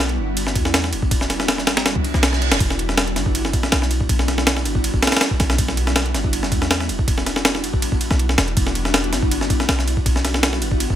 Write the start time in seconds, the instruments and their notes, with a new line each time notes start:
Already playing: 808-style bass B1
0.09 ride
0.18 808-style bass G1
0.37 ride
0.47 snare
0.55 808-style bass E2, kick, ride
0.65 snare
0.74 snare, ride
0.84 snare
0.93 808-style bass E1, ride
1.02 kick
1.11 kick, ride
1.21 snare
1.30 snare, ride
1.40 snare
1.48 snare, ride
1.58 snare
1.67 808-style bass G1, snare, ride
1.77 snare, ride
1.86 snare, ride, reverse cymbal
1.96 kick
2.04 ride
2.14 808-style bass B1, snare
2.23 snare, ride
2.33 snare
2.42 ride
2.51 808-style bass E1, snare, ride
2.60 808-style bass E1, kick, ride
2.70 snare
2.79 ride
2.89 snare
2.97 snare, ride
3.07 ride
3.16 808-style bass G1, snare, ride
3.26 kick
3.35 ride
3.45 snare
3.53 kick, ride
3.63 snare
3.72 808-style bass B1, snare, ride
3.82 snare
3.91 ride
4.01 kick
4.09 kick, ride
4.19 snare
4.28 snare, ride
4.38 snare
4.47 snare, ride
4.57 snare
4.65 808-style bass G1, ride
4.75 kick
4.84 ride
4.94 kick
5.03 snare, ride
5.07 snare, ride
5.12 snare, ride
5.17 snare, ride
5.21 snare, ride
5.31 kick
5.40 808-style bass B1, snare, ride
5.50 snare
5.58 kick, ride
5.68 snare
5.77 ride
5.87 snare
5.96 snare, ride
6.06 ride
6.14 808-style bass G1, snare, ride
6.24 kick
6.33 ride
6.43 snare
6.52 808-style bass E2, kick, ride
6.62 snare
6.71 snare, ride
6.80 snare
6.89 808-style bass E1, ride
6.99 kick
7.08 kick, ride
7.18 snare
7.26 snare, ride
7.36 snare
7.45 snare, ride
7.55 snare
7.64 808-style bass G1, ride
7.73 kick
7.82 ride
7.92 kick
8.01 ride
8.11 808-style bass B1, snare
8.19 ride
8.29 snare
8.38 808-style bass E1, snare, ride
8.48 ride
8.57 808-style bass E1, kick, ride
8.67 snare
8.75 ride
8.85 snare
8.94 snare, ride
9.04 ride
9.13 808-style bass G1, snare, ride
9.23 kick
9.31 ride
9.41 snare
9.50 kick, ride
9.60 snare
9.69 808-style bass B1, snare, ride
9.79 snare
9.88 ride
9.97 kick
10.06 kick, ride
10.16 snare
10.25 snare, ride
10.34 snare
10.43 snare, ride
10.53 snare
10.62 808-style bass G1, ride
10.71 kick
10.80 ride
10.90 kick